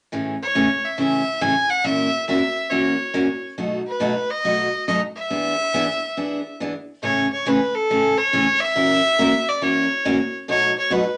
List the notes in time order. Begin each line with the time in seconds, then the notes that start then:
0.12 A2 C#3 E3 A3 C#4 G#4
0.43 C#5
0.55 A2 C#3 E3 A3 C#4 G#4
0.85 E5
0.98 A2 C#3 E3 A3 C#4 G#4 E5
1.41 A2 C#3 E3 A3 C#4 G#4 G#5
1.70 F#5
1.84 A#2 E3 A#3 C#4 F#4 A#4 E5
2.28 A#2 E3 A#3 C#4 F#4 A#4 E5
2.70 A#2 E3 A#3 C#4 F#4 A#4 C#5
3.14 A#2 E3 A#3 C#4 F#4 A#4
3.58 B2 F#3 A3 D#4 F#4
3.87 B4
4.00 B2 F#3 A3 D#4 F#4
4.30 D#5
4.44 B2 F#3 A3 D#4 F#4
4.88 B2 F#3 A3 D#4 F#4 D#5
5.16 E5
5.30 E3 B3 D4 G#4
5.74 E3 B3 D4 G#4
6.17 E3 B3 D4 G#4
6.60 E3 B3 D4 G#4
7.03 A2 C#3 E3 A3 C#4 G#4 C#5
7.33 C#5
7.46 A2 C#3 E3 A3 C#4 G#4 B4
7.75 A4
7.90 A2 C#3 E3 A3 C#4 G#4
8.18 C#5
8.33 A2 C#3 E3 A3 C#4 G#4
8.60 E5
8.75 A#2 E3 A#3 C#4 F#4 A#4
9.18 A#2 E3 A#3 C#4 F#4 A#4
9.49 D5
9.62 A#2 E3 A#3 C#4 F#4 A#4 C#5
10.05 A#2 E3 A#3 C#4 F#4 A#4
10.48 B2 F#3 A3 D#4 F#4 C#5
10.78 C#5
10.90 B2 F#3 A3 D#4 F#4 B4